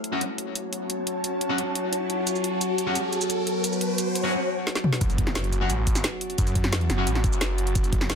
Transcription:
Already playing: synth drone F#3 C#4 F#4, ambient pad F#4 C#5, riser
0.04 closed hi-hat
0.12 distorted electric guitar F#3 C#4 F#4
0.21 closed hi-hat
0.38 ambient pad A5, closed hi-hat
0.55 closed hi-hat
0.73 closed hi-hat
0.90 closed hi-hat
1.07 closed hi-hat
1.24 closed hi-hat
1.41 closed hi-hat
1.49 distorted electric guitar F#3 C#4 F#4
1.58 closed hi-hat
1.75 closed hi-hat
1.93 closed hi-hat
2.10 closed hi-hat
2.27 synth drone B3, closed hi-hat, shaker
2.35 shaker
2.44 closed hi-hat
2.61 closed hi-hat, shaker
2.78 closed hi-hat, shaker
2.87 distorted electric guitar F#3 C#4 F#4
2.95 closed hi-hat, shaker
3.13 closed hi-hat, shaker
3.21 shaker
3.30 closed hi-hat, shaker
3.47 closed hi-hat
3.64 closed hi-hat, shaker
3.73 shaker
3.81 closed hi-hat
3.98 closed hi-hat, shaker
4.15 closed hi-hat, shaker
4.24 distorted electric guitar F#3 C#4 F#4
4.67 snare
4.75 snare
4.84 mid tom
4.93 snare
5.01 detuned saw bass F#1, synth drone F#3 C#4 F#4, kick, closed hi-hat, impact, shaker
5.10 closed hi-hat, shaker
5.18 kick, closed hi-hat
5.27 snare
5.35 snare, closed hi-hat, shaker
5.44 closed hi-hat
5.53 detuned saw bass F#1, closed hi-hat, shaker
5.61 distorted electric guitar F#3 C#4 F#4
5.70 detuned saw bass A1, closed hi-hat, shaker
5.87 kick, closed hi-hat, shaker
5.95 snare, shaker
6.04 snare, closed hi-hat, shaker
6.21 closed hi-hat
6.30 closed hi-hat
6.38 detuned saw bass F#2, kick, closed hi-hat, shaker
6.47 closed hi-hat, shaker
6.55 kick, closed hi-hat
6.64 snare
6.73 snare, closed hi-hat, shaker
6.81 closed hi-hat
6.90 detuned saw bass F#1, snare, closed hi-hat, shaker
6.98 distorted electric guitar F#3 C#4 F#4
7.07 detuned saw bass A1, closed hi-hat, shaker
7.15 snare
7.24 kick, closed hi-hat, shaker
7.33 shaker
7.41 detuned saw bass F#1, snare, closed hi-hat, shaker
7.58 closed hi-hat
7.67 closed hi-hat
7.75 detuned saw bass F#1, synth drone B3, kick, closed hi-hat, shaker
7.84 closed hi-hat, shaker
7.93 kick, closed hi-hat
8.01 snare
8.10 snare, closed hi-hat, shaker

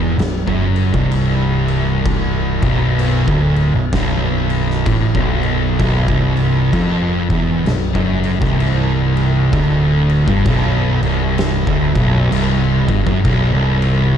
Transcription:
Already playing: picked electric bass E1, distorted electric guitar E2
0.18 picked electric bass B0, distorted electric guitar B1, snare, crash
0.47 picked electric bass F#1, distorted electric guitar F#2, kick
0.76 crash
0.94 picked electric bass C1, distorted electric guitar C2, kick
1.11 crash
1.68 crash
2.06 kick, crash
2.62 picked electric bass B0, distorted electric guitar B1, kick, crash
2.99 crash
3.27 picked electric bass D1, distorted electric guitar D2, kick
3.56 crash
3.74 picked electric bass B0, distorted electric guitar B1
3.93 picked electric bass B0, distorted electric guitar B1, kick, snare, crash
4.50 crash
4.70 snare
4.86 picked electric bass A1, distorted electric guitar A2, kick, crash
5.15 picked electric bass B0, distorted electric guitar B1, kick
5.43 crash
5.79 picked electric bass B0, distorted electric guitar B1, kick, crash
6.08 picked electric bass C1, distorted electric guitar C2, kick
6.37 crash
6.73 picked electric bass F1, distorted electric guitar F2, kick, crash
7.30 picked electric bass E1, distorted electric guitar E2, kick, crash
7.66 picked electric bass B0, distorted electric guitar B1, snare, crash
7.94 picked electric bass F#1, distorted electric guitar F#2, kick
8.24 crash
8.40 picked electric bass C1, distorted electric guitar C2, kick, snare
8.60 crash
9.17 crash
9.52 picked electric bass D1, distorted electric guitar D2, kick, crash
10.10 crash
10.27 picked electric bass G1, distorted electric guitar G2, kick
10.45 picked electric bass B0, distorted electric guitar B1, kick, crash
11.02 picked electric bass C1, distorted electric guitar C2, crash
11.38 snare, crash
11.67 picked electric bass D1, distorted electric guitar D2, kick
11.94 picked electric bass B0, distorted electric guitar B1, kick, crash
12.31 picked electric bass C1, distorted electric guitar C2, crash
12.88 picked electric bass G1, distorted electric guitar G2, kick, crash
13.06 picked electric bass F#1, distorted electric guitar F#2, kick
13.24 picked electric bass B0, distorted electric guitar B1, kick, crash
13.52 picked electric bass C1, distorted electric guitar C2
13.82 crash

